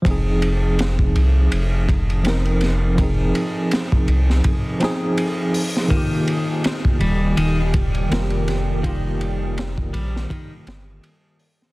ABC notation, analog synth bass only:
X:1
M:4/4
L:1/8
Q:"Swing 16ths" 1/4=82
K:Fm
V:1 name="Analog synth bass" clef=bass
F,,,3 C,, F,,,4- | F,,, z2 C,, z4 | z3 E,,, E,,,2 F,,,2- | F,,,3 B,,, z G,,, z2 |]